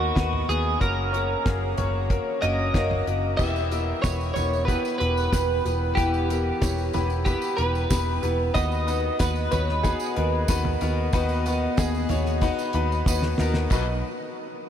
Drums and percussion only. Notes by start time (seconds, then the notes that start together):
0.16 kick, snare, closed hi-hat
0.33 floor tom
0.50 closed hi-hat
0.81 kick, closed hi-hat
1.14 closed hi-hat
1.46 kick, snare, closed hi-hat
1.78 closed hi-hat, floor tom
2.10 kick, closed hi-hat
2.42 closed hi-hat
2.74 kick, snare, closed hi-hat
2.91 floor tom
3.07 closed hi-hat
3.39 kick, crash, tambourine
3.56 tambourine
3.72 closed hi-hat, tambourine
4.03 kick, snare, closed hi-hat, tambourine
4.21 tambourine
4.36 closed hi-hat, floor tom, tambourine
4.53 tambourine
4.68 kick, closed hi-hat, tambourine
4.85 tambourine
5.01 closed hi-hat
5.17 tambourine
5.33 kick, snare, closed hi-hat, tambourine
5.66 closed hi-hat, tambourine
5.97 kick, closed hi-hat, tambourine
6.14 tambourine
6.30 closed hi-hat, tambourine
6.62 kick, snare, closed hi-hat, tambourine
6.78 tambourine
6.93 closed hi-hat, floor tom, tambourine
7.10 tambourine
7.26 kick, closed hi-hat, tambourine
7.42 tambourine
7.58 closed hi-hat
7.75 tambourine
7.90 kick, snare, closed hi-hat, tambourine
8.23 closed hi-hat, tambourine
8.55 kick, closed hi-hat, tambourine
8.71 tambourine
8.88 closed hi-hat, tambourine
9.19 kick, snare, closed hi-hat, tambourine
9.36 tambourine
9.52 closed hi-hat, floor tom, tambourine
9.69 snare
9.84 kick, closed hi-hat, tambourine
10.00 tambourine
10.16 closed hi-hat
10.48 kick, snare, closed hi-hat, tambourine
10.65 floor tom
10.81 closed hi-hat, tambourine
11.13 kick, closed hi-hat, tambourine
11.29 tambourine
11.46 closed hi-hat, tambourine
11.77 kick, snare, closed hi-hat, tambourine
11.94 tambourine
12.09 closed hi-hat, floor tom, tambourine
12.25 snare, tambourine
12.41 kick, closed hi-hat, tambourine
12.59 tambourine
12.73 closed hi-hat
12.92 tambourine
13.06 kick, snare, tambourine
13.22 snare
13.38 snare, tambourine
13.54 snare
13.70 kick, crash, tambourine